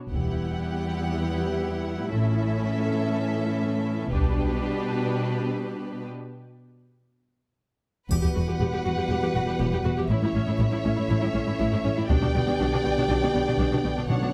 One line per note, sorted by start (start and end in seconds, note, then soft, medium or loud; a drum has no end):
0.12 0.59 E1 soft
0.12 2.09 E2 soft
0.12 2.08 G3 soft
0.12 2.08 B3 soft
0.12 4.07 E4 soft
0.12 2.08 G4 soft
0.12 2.08 F#5 soft
0.12 taiko soft
2.12 2.58 A1 soft
2.12 4.08 A2 soft
2.12 4.07 E3 soft
2.12 4.07 C#4 soft
2.12 4.08 C#4 soft
2.12 4.08 A4 soft
2.12 4.08 E5 soft
4.11 4.58 B1 soft
4.11 6.12 B2 soft
4.11 6.07 G3 soft
4.11 6.07 D4 soft
4.11 6.08 D4 soft
4.11 6.08 G4 soft
4.11 6.07 B4 soft
4.11 taiko soft
8.10 8.16 E1 soft
8.10 8.16 E2 soft
8.10 12.06 E3 soft
8.10 10.07 G3 soft
8.10 10.07 B3 soft
8.10 10.07 F#4 soft
8.10 8.16 G4 soft
8.10 10.06 B4 soft
8.10 10.07 F#5 soft
8.10 taiko soft
8.10 triangle soft
8.22 8.28 E2 soft
8.22 8.27 G4 soft
8.35 8.41 E1 soft
8.35 8.41 E2 soft
8.35 8.40 F#4 soft
8.47 8.53 E2 soft
8.47 8.52 G4 soft
8.60 8.66 E1 soft
8.60 8.66 E2 soft
8.60 8.65 G4 soft
8.72 8.78 E2 soft
8.72 8.77 G4 soft
8.84 8.91 E1 soft
8.84 8.91 E2 soft
8.84 8.90 F#4 soft
8.97 9.03 E2 soft
8.97 9.02 G4 soft
9.10 9.15 E1 soft
9.10 9.15 E2 soft
9.10 9.15 G4 soft
9.22 9.28 E2 soft
9.22 9.28 G4 soft
9.35 9.40 E1 soft
9.35 9.40 E2 soft
9.35 9.40 F#4 soft
9.47 9.53 E2 soft
9.47 9.52 G4 soft
9.59 9.65 E1 medium
9.59 9.65 E2 medium
9.59 9.64 G4 soft
9.72 9.78 E2 soft
9.72 9.77 G4 soft
9.84 9.90 E1 soft
9.84 9.91 E2 soft
9.84 9.90 F#4 soft
9.98 10.03 E2 soft
9.98 10.03 G4 soft
10.09 10.15 A1 medium
10.09 10.15 A2 medium
10.09 12.06 A3 soft
10.09 12.09 C#4 medium
10.09 12.10 E4 medium
10.09 10.15 E4 medium
10.09 12.06 C#5 soft
10.09 12.06 E5 soft
10.23 10.28 A2 soft
10.23 10.28 E4 soft
10.35 10.40 A1 soft
10.35 10.40 A2 soft
10.35 10.40 C#4 soft
10.48 10.53 A2 soft
10.48 10.53 E4 soft
10.59 10.64 A1 medium
10.59 10.65 A2 medium
10.59 10.65 E4 medium
10.72 10.77 A2 soft
10.72 10.77 E4 soft
10.84 10.90 A1 soft
10.84 10.90 A2 soft
10.84 10.89 C#4 soft
10.96 11.02 A2 soft
10.96 11.01 E4 soft
11.09 11.15 A1 medium
11.09 11.14 A2 medium
11.09 11.14 E4 medium
11.21 11.27 A2 soft
11.21 11.26 E4 soft
11.34 11.39 A1 soft
11.34 11.40 A2 soft
11.34 11.39 C#4 soft
11.47 11.53 A2 soft
11.47 11.52 E4 soft
11.59 11.65 A1 medium
11.59 11.66 A2 medium
11.59 11.64 E4 medium
11.72 11.78 A2 soft
11.72 11.77 E4 soft
11.84 11.90 A1 soft
11.84 11.90 A2 soft
11.84 11.89 C#4 soft
11.97 12.03 A2 soft
11.97 12.02 E4 soft
12.09 12.15 B1 medium
12.09 12.14 B2 medium
12.09 14.33 D3 soft
12.09 14.33 B3 soft
12.09 12.14 D4 medium
12.09 13.92 D4 medium
12.09 13.92 G4 medium
12.09 14.09 D5 soft
12.09 14.06 G5 medium
12.09 taiko medium
12.21 12.27 B2 soft
12.21 12.27 D4 soft
12.34 12.41 B1 soft
12.34 12.40 B2 soft
12.34 12.39 B3 soft
12.47 12.52 B2 soft
12.47 12.52 D4 soft
12.59 12.65 B1 medium
12.59 12.65 B2 medium
12.59 12.64 D4 medium
12.72 12.77 B2 soft
12.72 12.78 D4 soft
12.85 12.90 B1 soft
12.85 12.90 B2 soft
12.85 12.90 B3 soft
12.97 13.02 B2 soft
12.97 13.02 D4 soft
13.09 13.14 B1 soft
13.09 13.15 B2 medium
13.09 13.15 D4 medium
13.22 13.28 B2 soft
13.22 13.27 D4 soft
13.34 13.39 B1 soft
13.34 13.40 B2 soft
13.34 13.39 B3 soft
13.47 13.52 B2 soft
13.47 13.52 D4 soft
13.59 13.64 B1 medium
13.59 13.64 B2 medium
13.59 13.64 D4 soft
13.72 13.77 B2 soft
13.72 13.77 D4 soft
13.84 13.89 B1 soft
13.84 13.90 B2 soft
13.84 13.89 B3 soft
13.97 14.02 B2 soft
13.97 14.02 D4 soft
14.09 14.14 B1 soft
14.09 14.14 B2 soft
14.09 14.33 B2 medium
14.09 14.33 C#4 soft
14.09 14.33 D4 soft
14.09 14.14 D4 soft
14.09 14.33 C#5 soft
14.09 14.33 F#5 soft
14.21 14.27 B2 soft
14.21 14.27 D4 soft